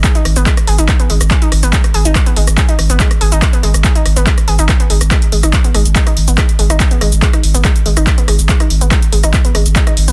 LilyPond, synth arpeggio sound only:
\new Staff \with { instrumentName = "Synth arpeggio sound" } { \time 4/4 \key gis \minor \tempo 4 = 142 gis'16 dis'16 r16 b16 gis16 r16 gis'16 dis'16 r16 b16 gis16 r16 gis'16 dis'16 r16 b16 | gis16 r16 gis'16 dis'16 r16 b16 gis16 r16 gis'16 dis'16 r16 b16 gis16 r16 gis'16 dis'16 | r16 b16 gis16 r16 gis'16 dis'16 r16 b16 gis16 r16 gis'16 dis'16 r16 b16 gis16 r16 | gis16 r16 gis16 dis'16 r16 b16 gis16 r16 gis16 dis'16 r16 b16 gis16 r16 gis16 dis'16 |
r16 b16 gis16 r16 gis16 dis'16 r16 b16 gis16 r16 gis16 dis'16 r16 b16 gis16 r16 | gis16 dis'16 r16 b16 gis16 r16 gis16 dis'16 r16 b16 gis16 r16 gis16 dis'16 r16 b16 | }